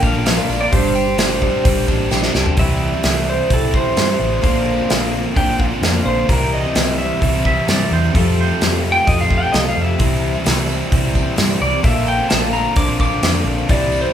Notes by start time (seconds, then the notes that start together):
Already playing: D3 A#3 D4 F4 A#4 D5
0.03 A#1 A#3 D4 F4 A#4 F5, kick, tambourine
0.14 A#3 D4 F4 A#4
0.26 A#2 F3 A#3 D4 F4 A#4 D5 F5, snare, open hi-hat, tambourine
0.37 A#3 D4 F4 A#4
0.48 A#1 A#3 D4 F4 A#4, tambourine
0.60 A#3 D4 F4 A#4 D5
0.71 G1 G2 G3 D4 G4 C5 D5, kick, open hi-hat, tambourine
0.95 G4, tambourine
1.05 D4 G4 C5
1.18 G3 C4 D4 G4 C5 D5, snare, open hi-hat, tambourine
1.41 G3 D4 G4 C5 D5, kick, tambourine
1.64 G1 C4 D4 G4 C5 D5, kick, open hi-hat, tambourine
1.86 A1 G3 D4 G4 C5, kick, tambourine
2.10 A#1 G3 D4 G4 C5 D5, snare, tambourine
2.23 snare
2.33 C2 G3 D4 G4 C5, snare, tambourine
2.45 D4 G4 C5, floor tom
2.57 C2 C3 E3 G3 C4 E4 G4 C5 E5, kick, open hi-hat
2.92 G3 C4 E4 C5
3.03 C2 C3 E3 G3 C4 E4 G4 A4 C5, snare, open hi-hat
3.27 G3 C4 E4 C5
3.49 C2 C3 E3 G3 C4 E4 G4 A4, kick, open hi-hat
3.54 A4
3.61 G3 C4 E4 C5
3.73 G3 C4 E4 C5, kick
3.84 G3 C4 E4 C5
3.96 G2 C3 E3 G3 C4 E4 G4 C5, snare, open hi-hat
4.07 G3 C4 E4 C5
4.19 A1
4.30 G3 C4 E4 C5
4.41 A#1 A#2 D3 A#3 C4 D4 F4 A#4 C5, kick, open hi-hat
4.77 A#3 C4 F4 C5
4.89 A#1 A#2 D3 A#3 C4 D4 F4 A#4 C5, snare, open hi-hat
5.12 A#3 C4 F4 C5
5.24 A#3 C4 F4 C5
5.35 A#1 A#2 D3 A#3 D4 F4 A#4 C5 G5, kick, open hi-hat
5.45 A#3 C4 F4 C5
5.59 A#3 C4 F4 C5 F5, kick
5.70 A#3 C4 F4 C5
5.81 F2 A#2 D3 A#3 C4 D4 F4 A#4 C5, snare, open hi-hat
5.95 A#3 C4 F4 C5
6.05 A#1 C5
6.18 A#3 C4 F4 C5
6.28 C2 C3 E3 G3 C4 E4 G4 A#4 C5, kick, open hi-hat
6.53 D#5
6.64 G3 C4 E4 C5
6.75 C2 C3 E3 G3 C4 E4 G4 C5, snare, open hi-hat
6.98 G3 C4 E4 C5 E5
7.21 C2 C3 E3 G3 C4 E4 G4 C5, kick, open hi-hat
7.34 G3 C4 E4 C5
7.45 G3 C4 E4 C5 E5, kick
7.67 G2 C3 E3 G3 C4 E4 G4 C5 D5, snare, open hi-hat
7.81 G3 C4 E4 C5
7.91 E2 C5
8.05 G3 C4 E4 C5
8.13 F2 C3 F3 G3 A3 C4 F4 G4 A4, kick, open hi-hat
8.41 C5
8.48 C4 G4 A4
8.60 F2 F3 G3 C4 F4 G4 A4, snare, open hi-hat
8.84 G3 C4 G4 A4
8.92 G5
9.07 F2 C3 F3 A3 C4 F4 G4 A4 D#5, kick, open hi-hat
9.19 C4 G4 A4 F5
9.29 G3 C4 G4 A4, kick
9.38 A4 G5
9.44 C4
9.52 C2 F3 G3 C4 F4 G4 A4 D#5, snare, open hi-hat
9.65 C4 G4 A4 F5
9.77 F2
9.82 E5
9.87 C4 G4 A4
9.98 C2 C3 E3 G3 C4 E4 G4 C5, kick, open hi-hat, tambourine
10.12 tambourine
10.33 G3 C4 E4 C5, tambourine
10.44 C2 C3 E3 G3 C4 E4 G4 C5, snare, open hi-hat, tambourine
10.66 G3 C4 E4 C5, tambourine
10.81 tambourine
10.91 C2 C3 E3 G3 C4 E4 G4 C5, kick, open hi-hat
11.01 G3 C4 E4 C5
11.13 G3 C4 E4 C5, kick, tambourine
11.26 tambourine
11.36 G2 C3 E3 G3 C4 E4 G4 C5 D5, snare, open hi-hat, tambourine
11.48 G3 C4 E4 C5, tambourine
11.61 C2 D5, tambourine
11.70 G3 C4 E4 C5, tambourine
11.83 A#1 A#2 D3 A#3 C4 D4 F4 A#4 C5 E5, kick, open hi-hat, tambourine
11.96 tambourine
12.07 G5, tambourine
12.18 A#3 C4 F4 C5, tambourine
12.29 A#1 A#2 D3 A#3 C4 F4 A#4 C5 A5, snare, open hi-hat, tambourine
12.52 A#3 C4 F4 C5 A#5, tambourine
12.64 tambourine
12.76 A#1 A#2 D3 A#3 D4 F4 A#4 C5 D6, kick, open hi-hat
12.87 A#3 C4 F4 C5
12.99 A#3 C4 F4 C5 D6, kick, tambourine
13.09 A#3 C4 F4 C5, tambourine
13.22 F2 A#2 D3 A#3 C4 D4 F4 A#4 C5, snare, open hi-hat, tambourine
13.34 A#3 C4 F4 C5, tambourine
13.44 A#1, tambourine
13.57 A#3 C4 F4 C5, tambourine
13.68 C2 C3 E3 G3 C4 E4 G4 C5 D5, kick, open hi-hat, tambourine
13.81 tambourine
13.92 tambourine
14.01 G3 C4 E4 C5, tambourine